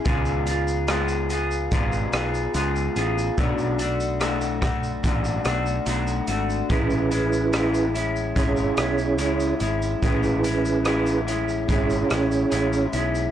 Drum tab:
HH |x-x-x-x-x-x-x-x-|x-x-x-x-x-x-x-x-|x-x-x-x-x-x-x-x-|x-x-x-x-x-x-x-x-|
SH |xxxxxxxxxxxxxxxx|xxxxxxxxxxxxxxxx|xxxxxxxxxxxxxxxx|xxxxxxxxxxxxxxxx|
SD |----r-----r-----|----r-r---r-----|----r-----r-----|----r-----r-----|
BD |o-------o-------|o-----o-o-------|o-------o-------|o-------o-------|